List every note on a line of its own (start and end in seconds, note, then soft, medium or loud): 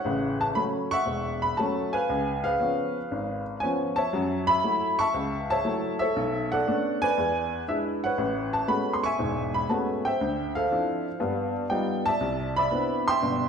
0.00 0.88 C#5 medium
0.00 0.42 F#5 medium
0.04 0.50 A1 medium
0.04 0.49 C#3 medium
0.41 0.46 A5 medium
0.55 0.92 F#3 medium
0.55 0.92 A3 soft
0.55 0.93 C#4 medium
0.55 0.63 B5 medium
0.91 1.90 E5 medium
0.91 1.90 F#5 medium
0.91 1.44 C#6 loud
1.06 1.51 E1 medium
1.42 1.58 B5 medium
1.57 1.95 F#3 medium
1.57 1.95 A3 medium
1.57 1.95 C#4 medium
1.57 1.94 A5 medium
1.93 2.43 B4 medium
1.93 2.42 F5 medium
1.93 2.45 G#5 medium
2.09 2.53 C#2 medium
2.44 3.42 G#4 medium
2.44 3.42 B4 medium
2.44 3.41 F5 medium
2.59 2.96 F3 soft
2.59 2.96 B3 soft
2.59 2.97 C#4 medium
3.11 3.55 G#1 medium
3.60 3.99 F3 medium
3.60 3.99 B3 medium
3.60 3.99 C#4 medium
3.60 3.68 G#5 medium
3.96 4.95 C#5 medium
3.96 4.48 E5 medium
3.96 4.43 A5 loud
4.13 4.57 F#2 medium
4.13 4.57 F#3 medium
4.47 4.99 E5 medium
4.47 4.94 B5 loud
4.64 5.00 F#3 soft
4.64 5.00 A3 soft
4.64 5.00 E4 medium
4.99 5.51 E5 medium
4.99 5.49 A5 medium
4.99 5.50 C#6 loud
5.14 5.58 C#2 medium
5.50 6.00 C#5 medium
5.50 5.98 E5 medium
5.50 5.97 A5 loud
5.64 6.01 F#3 medium
5.64 6.01 A3 medium
5.64 6.01 E4 medium
5.99 6.52 A4 medium
5.99 6.97 C#5 medium
5.99 6.51 E5 medium
6.16 6.60 B1 medium
6.52 7.14 A4 medium
6.52 7.02 D5 medium
6.52 6.98 F#5 medium
6.67 7.03 A3 medium
6.67 7.03 B3 soft
6.67 7.03 C#4 soft
6.67 7.03 D4 medium
7.02 7.99 B4 medium
7.02 7.99 D5 medium
7.02 7.63 G#5 loud
7.18 7.61 E2 medium
7.68 8.04 G#3 medium
7.68 8.04 D4 medium
7.68 8.04 E4 medium
7.68 7.76 E5 medium
8.04 9.00 B4 medium
8.04 9.00 C#5 medium
8.04 8.55 F#5 medium
8.18 8.62 A1 medium
8.53 8.69 A5 medium
8.67 9.04 G#3 soft
8.67 9.04 A3 soft
8.67 9.04 B3 soft
8.67 9.04 C#4 soft
8.67 9.04 F#4 medium
8.67 8.94 B5 medium
8.93 9.03 C6 medium
9.04 10.01 E5 medium
9.04 10.01 G#5 medium
9.04 9.55 C#6 loud
9.19 9.62 E1 medium
9.19 9.63 G#2 medium
9.54 9.70 B5 medium
9.69 10.05 G#3 medium
9.69 10.05 A3 medium
9.69 10.06 B3 medium
9.69 10.06 C#4 medium
9.69 10.06 F#4 medium
9.69 9.77 A5 medium
10.05 10.55 C5 medium
10.05 11.02 E5 medium
10.05 10.51 G5 medium
10.21 10.64 D2 medium
10.55 11.17 A4 medium
10.55 11.18 C5 medium
10.55 11.51 F5 medium
10.71 11.06 F3 medium
10.71 11.07 C4 soft
10.71 11.07 D4 soft
10.71 11.07 E4 medium
11.20 11.64 G2 medium
11.20 11.64 B3 medium
11.70 12.07 G3 medium
11.70 12.07 B3 medium
11.70 12.07 D#4 medium
11.70 12.07 F4 medium
11.70 12.06 G5 medium
12.06 12.57 D5 medium
12.06 12.57 E5 medium
12.06 12.52 A5 loud
12.21 12.65 C2 medium
12.56 13.49 D5 medium
12.56 13.09 E5 medium
12.56 13.03 B5 loud
12.71 13.08 B3 medium
12.71 13.08 C4 soft
12.71 13.08 D4 soft
12.71 13.08 E4 medium
13.08 13.49 E5 medium
13.08 13.49 G5 medium
13.08 13.49 C6 loud
13.22 13.49 G1 medium
13.22 13.49 B2 medium